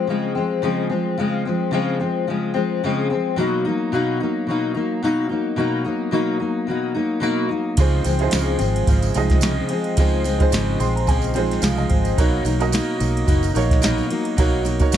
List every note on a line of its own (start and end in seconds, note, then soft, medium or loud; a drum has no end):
0.07 0.35 C#3 medium
0.07 0.36 F3 medium
0.07 0.36 G#3 medium
0.07 0.34 C4 medium
0.35 0.62 F3 medium
0.35 0.63 G#3 medium
0.35 0.62 C4 medium
0.62 0.90 C#3 medium
0.62 0.90 F3 loud
0.62 0.90 G#3 medium
0.62 0.88 C4 medium
0.89 1.17 F3 soft
0.89 1.18 G#3 medium
0.89 1.17 C4 medium
1.17 1.45 C#3 medium
1.17 1.46 F3 medium
1.17 1.46 G#3 medium
1.17 1.44 C4 medium
1.45 1.71 F3 medium
1.45 1.72 G#3 medium
1.45 1.73 C4 medium
1.71 1.99 C#3 medium
1.71 2.00 F3 loud
1.71 2.00 G#3 loud
1.71 1.98 C4 loud
2.00 2.27 F3 medium
2.00 2.28 G#3 medium
2.00 2.27 C4 medium
2.27 2.55 C#3 medium
2.27 2.55 F3 medium
2.27 2.55 G#3 medium
2.27 2.53 C4 medium
2.54 2.83 F3 medium
2.54 2.83 G#3 medium
2.54 2.82 C4 medium
2.84 3.11 C#3 medium
2.84 3.11 F3 medium
2.84 3.11 G#3 medium
2.84 3.09 C4 loud
3.10 3.37 F3 soft
3.10 3.38 G#3 medium
3.10 3.38 C4 medium
3.36 3.64 B2 medium
3.36 3.65 F#3 loud
3.36 3.65 A#3 medium
3.36 3.63 D#4 medium
3.65 3.93 A#3 medium
3.65 3.92 D#4 medium
3.69 3.92 F#3 medium
3.92 4.20 B2 medium
3.92 4.20 F#3 medium
3.92 4.21 A#3 loud
3.92 4.19 D#4 medium
4.20 4.47 F#3 medium
4.20 4.49 A#3 medium
4.20 4.48 D#4 medium
4.47 4.75 B2 medium
4.47 4.76 F#3 medium
4.47 4.76 A#3 medium
4.47 4.73 D#4 medium
4.74 5.02 F#3 medium
4.74 5.03 A#3 medium
4.74 5.02 D#4 medium
5.03 5.30 B2 medium
5.03 5.31 F#3 medium
5.03 5.30 A#3 medium
5.03 5.28 D#4 loud
5.29 5.56 F#3 soft
5.29 5.57 A#3 medium
5.29 5.57 D#4 medium
5.56 5.84 B2 medium
5.56 5.85 F#3 medium
5.56 5.84 A#3 medium
5.56 5.83 D#4 medium
5.84 6.11 F#3 soft
5.84 6.12 A#3 medium
5.84 6.12 D#4 medium
6.11 6.39 B2 medium
6.11 6.40 F#3 medium
6.11 6.40 A#3 medium
6.11 6.38 D#4 medium
6.40 6.67 F#3 medium
6.40 6.68 A#3 medium
6.40 6.67 D#4 medium
6.67 6.95 B2 medium
6.67 6.96 F#3 medium
6.67 6.95 A#3 medium
6.67 6.93 D#4 medium
6.94 7.22 A#3 medium
6.94 7.21 D#4 medium
6.99 7.20 F#3 medium
7.20 7.49 B2 medium
7.20 7.50 F#3 medium
7.20 7.50 A#3 loud
7.20 7.48 D#4 medium
7.49 7.77 F#3 soft
7.49 7.78 A#3 medium
7.49 7.77 D#4 medium
7.77 8.00 C#2 loud
7.77 8.05 C#3 medium
7.77 8.05 F3 medium
7.77 8.06 G#3 medium
7.77 8.04 C4 loud
7.77 8.14 D#4 medium
7.77 8.14 F4 medium
7.77 8.14 G#4 medium
7.77 8.15 C5 loud
7.77 kick loud
7.77 ride medium
7.77 tambourine medium
8.04 8.27 C#2 loud
8.04 8.31 F3 soft
8.04 8.32 G#3 medium
8.04 8.33 C4 medium
8.04 ride medium
8.04 tambourine soft
8.19 9.02 D#4 medium
8.19 8.26 E4 medium
8.19 9.03 G#4 medium
8.19 9.03 C5 medium
8.19 ride soft
8.27 9.05 F4 medium
8.31 8.55 C#2 medium
8.31 8.60 C#3 medium
8.31 8.60 F3 loud
8.31 8.59 G#3 loud
8.31 8.57 C4 medium
8.31 snare loud
8.31 ride medium
8.31 tambourine medium
8.58 8.82 G#1 loud
8.58 8.87 F3 medium
8.58 8.88 G#3 medium
8.58 8.87 C4 medium
8.58 ride medium
8.58 tambourine soft
8.76 ride soft
8.87 9.10 G#1 loud
8.87 9.15 C#3 medium
8.87 9.15 F3 medium
8.87 9.15 G#3 medium
8.87 9.14 C4 medium
8.87 kick loud
8.87 ride medium
8.87 tambourine soft
9.02 ride soft
9.02 tambourine soft
9.14 9.60 C2 medium
9.14 9.43 G#3 medium
9.14 9.43 C4 medium
9.14 9.87 D#4 medium
9.14 9.87 F4 medium
9.14 9.88 G#4 medium
9.14 9.88 D#5 medium
9.14 ride medium
9.14 tambourine medium
9.18 9.42 F3 soft
9.30 kick medium
9.30 snare soft
9.30 ride soft
9.41 9.70 C#3 medium
9.41 9.70 F3 medium
9.41 9.71 G#3 medium
9.41 9.68 C4 loud
9.41 snare loud
9.41 ride medium
9.41 tambourine medium
9.69 9.98 G#3 medium
9.69 9.97 C4 medium
9.69 ride medium
9.74 9.97 F3 medium
9.84 ride soft
9.97 10.42 C#2 loud
9.97 10.25 C#3 medium
9.97 10.25 F3 medium
9.97 10.25 G#3 medium
9.97 10.23 C4 loud
9.97 10.33 D#4 medium
9.97 10.34 F4 medium
9.97 10.34 G#4 medium
9.97 10.35 C5 medium
9.97 kick loud
9.97 ride medium
9.97 tambourine medium
10.24 10.52 F3 soft
10.24 10.53 G#3 medium
10.24 10.52 C4 medium
10.24 ride medium
10.24 tambourine soft
10.39 11.21 D#4 medium
10.39 11.22 F4 medium
10.39 11.23 G#4 medium
10.39 11.23 C5 loud
10.39 kick medium
10.39 ride soft
10.52 10.75 G#1 medium
10.52 10.80 C#3 medium
10.52 10.80 F3 medium
10.52 10.80 G#3 medium
10.52 10.78 C4 loud
10.52 snare loud
10.52 ride medium
10.52 tambourine medium
10.79 11.59 A#1 loud
10.79 11.06 F3 medium
10.79 11.07 G#3 medium
10.79 11.07 C4 medium
10.79 10.94 C6 medium
10.79 ride medium
10.79 tambourine soft
10.96 11.07 A#5 medium
10.96 ride soft
11.06 11.35 C#3 medium
11.06 11.35 F3 medium
11.06 11.35 G#3 medium
11.06 11.33 C4 medium
11.06 11.59 G#5 medium
11.06 kick medium
11.06 ride medium
11.06 tambourine soft
11.22 ride soft
11.22 tambourine soft
11.34 11.62 G#3 medium
11.34 11.62 C4 medium
11.34 12.07 D#4 medium
11.34 12.07 F4 medium
11.34 12.07 G#4 medium
11.34 12.08 C5 medium
11.34 ride medium
11.34 tambourine soft
11.38 11.62 F3 soft
11.51 snare soft
11.51 ride soft
11.62 11.85 C2 medium
11.62 11.90 C#3 medium
11.62 11.90 F3 medium
11.62 11.90 G#3 loud
11.62 11.88 C4 loud
11.62 11.77 F5 medium
11.62 snare loud
11.62 ride medium
11.62 tambourine medium
11.77 12.15 D#5 medium
11.77 tambourine soft
11.89 12.13 G#1 medium
11.89 12.19 F3 soft
11.89 12.18 G#3 medium
11.89 12.17 C4 medium
11.89 kick medium
11.89 ride medium
12.05 ride soft
12.05 tambourine soft
12.17 12.40 B1 loud
12.17 12.45 B2 medium
12.17 12.46 F#3 medium
12.17 12.46 A#3 medium
12.17 12.53 D#4 medium
12.17 12.44 D#4 loud
12.17 12.54 F#4 medium
12.17 12.54 A#4 medium
12.17 12.54 C#5 medium
12.17 kick loud
12.17 ride medium
12.17 tambourine medium
12.45 12.79 B1 loud
12.45 12.72 A#3 medium
12.45 12.73 D#4 medium
12.45 ride medium
12.45 tambourine medium
12.49 12.72 F#3 medium
12.59 13.42 D#4 medium
12.59 13.42 F#4 medium
12.59 13.42 A#4 medium
12.59 13.43 D#5 medium
12.59 ride soft
12.59 tambourine soft
12.72 13.00 B2 medium
12.72 13.00 F#3 loud
12.72 13.00 A#3 loud
12.72 12.98 D#4 loud
12.72 snare loud
12.72 ride medium
12.72 tambourine medium
12.99 13.23 B1 loud
12.99 13.25 F#3 medium
12.99 13.27 A#3 medium
12.99 13.27 D#4 medium
12.99 ride medium
12.99 tambourine medium
13.17 ride soft
13.25 13.50 F#1 loud
13.25 13.54 B2 medium
13.25 13.55 F#3 medium
13.25 13.54 A#3 medium
13.25 13.52 D#4 medium
13.25 kick medium
13.25 ride medium
13.25 tambourine soft
13.43 ride soft
13.43 tambourine medium
13.53 14.00 A#1 loud
13.53 13.81 F#3 medium
13.53 13.82 A#3 medium
13.53 13.82 D#4 medium
13.53 14.26 D#4 medium
13.53 14.27 F#4 medium
13.53 14.27 A#4 medium
13.53 14.28 C#5 medium
13.53 ride medium
13.53 tambourine soft
13.71 kick medium
13.71 snare soft
13.71 ride soft
13.81 14.10 B2 medium
13.81 14.10 F#3 medium
13.81 14.10 A#3 medium
13.81 14.07 D#4 loud
13.81 snare loud
13.81 ride medium
13.81 tambourine medium
13.98 tambourine soft
14.09 14.37 A#3 medium
14.09 14.37 D#4 medium
14.09 ride medium
14.13 14.37 F#3 medium
14.25 ride soft
14.37 14.82 B1 medium
14.37 14.65 B2 medium
14.37 14.65 F#3 medium
14.37 14.64 A#3 medium
14.37 14.74 D#4 medium
14.37 14.62 D#4 medium
14.37 14.74 F#4 medium
14.37 14.74 A#4 medium
14.37 14.75 C#5 loud
14.37 kick loud
14.37 ride medium
14.37 tambourine medium
14.63 14.91 F#3 medium
14.63 14.92 A#3 medium
14.63 14.92 D#4 medium
14.63 ride medium
14.63 tambourine medium
14.80 14.97 D#4 medium
14.80 14.97 F#4 medium
14.80 14.97 A#4 medium
14.80 14.97 C#5 loud
14.80 kick medium
14.80 ride soft
14.80 tambourine soft
14.91 14.97 F#1 medium
14.91 14.97 B2 medium
14.91 14.97 F#3 medium
14.91 14.97 A#3 medium
14.91 ride medium
14.91 tambourine medium